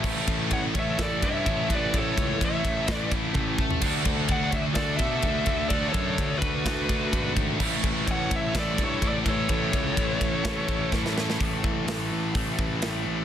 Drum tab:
CC |x---------------|----------------|x---------------|----------------|
RD |--x-x-x-x-x-x-x-|x-x-x-x-x-x-----|x-x-x-x-x-x-x-x-|x-x-x-x-x-x-x-x-|
HH |----------------|----------------|----------------|----------------|
SD |--------o-------|--------o-------|--------o-------|--------o-------|
T1 |----------------|------------o---|----------------|----------------|
FT |----------------|---------------o|----------------|----------------|
BD |o-o-o-o-o-o-o-o-|o-o-o-o-o-o-o-o-|o-o-o-o-o-o-o-o-|o-o-o-o-o-o-o-o-|

CC |x---------------|----------------|----------------|
RD |--x-x-x-x-x-x-x-|x-x-x-x-x-x-----|----------------|
HH |----------------|----------------|o---o---o---o---|
SD |--------o-------|--------o---oooo|----o-------o---|
T1 |----------------|----------------|----------------|
FT |----------------|----------------|----------------|
BD |o-o-o-o-o-o-o-o-|o-o-o-o-o-o-o---|o-o-----o-o-----|